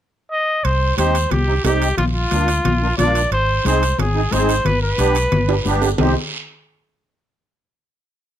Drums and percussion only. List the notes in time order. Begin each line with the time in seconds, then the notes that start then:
0.65 high conga, high timbale, long guiro
0.98 high conga, high timbale, short guiro
1.15 high timbale, short guiro
1.31 high conga, low conga, high timbale, long guiro
1.64 high conga, high timbale, low timbale, short guiro
1.82 high timbale, short guiro
1.98 high conga, low conga, high timbale, long guiro
2.31 high conga, high timbale, short guiro
2.48 high timbale, short guiro
2.65 high conga, low conga, high timbale, long guiro
2.98 high conga, low conga, high timbale, short guiro
3.15 high timbale, short guiro
3.32 high conga, high timbale, long guiro
3.65 high conga, high timbale, short guiro
3.83 high timbale, short guiro
3.98 high conga, low conga, high timbale, long guiro
4.31 high conga, high timbale, short guiro
4.49 high timbale, short guiro
4.65 high conga, low conga, high timbale, long guiro
4.98 high conga, high timbale, short guiro
5.15 high timbale, short guiro
5.32 high conga, low conga, high timbale, long guiro
5.49 high timbale
5.65 high conga, short guiro
5.82 low timbale, short guiro
5.98 low conga, low timbale, long guiro